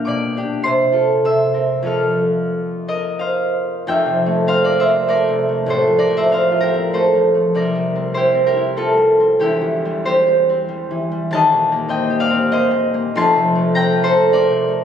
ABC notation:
X:1
M:3/4
L:1/16
Q:1/4=98
K:F
V:1 name="Harp"
[dfgd'f']4 [cc']4 [ee']4 | [ff']6 [B_e]2 [cf]4 | [eg]4 [cf] [Bd] [ce]2 [Bd]4 | [Ac]2 [Bd] [ce] [cf]2 [GB]2 [Ac]4 |
[Bd]4 [Gc]2 [GB]2 [FA]4 | [EG]4 [Gc]8 | [K:Cdor] [ea]4 [eg]2 [df]2 [ce]4 | [ac']4 [gb]2 [Ac]2 [Bd]4 |]
V:2 name="Harp"
[=B,,DF]2 [DG]2 C,2 [FA]2 C,2 [C_B]2 | [F,,F,CA]12 | (3[F,,,F,,]2 C,2 A,2 (3C2 F2 C2 (3A,2 C,2 A,2 | (3[A,,,A,,]2 F,2 A,2 (3C2 F2 C2 (3A,2 F,2 A,2 |
(3[C,,C,]2 G,2 C2 (3E2 C2 E2 (3C2 G,2 C2 | (3[E,,,E,,]2 E,2 G,2 (3C2 G2 C2 (3G,2 E,2 G,2 | [K:Cdor] (3[E,,,E,,]2 B,,2 B,2 (3C2 G2 C2 (3B,2 B,,2 B,2 | (3[F,,,F,,]2 C,2 A,2 (3C2 F2 C2 (3A,2 C,2 A,2 |]